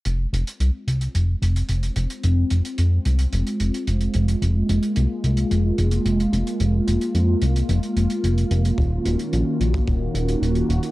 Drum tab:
HH |x-xxx-xxx-xxxxxx|x-xxx-xxxxxxxxxx|x-xxx-xxx-xxxxxx|x-xxx-xxxxxxxxxx|
BD |----------------|----------------|----------------|----------------|

HH |x-xxx-xxx-xxxxxx|
BD |o------oo-------|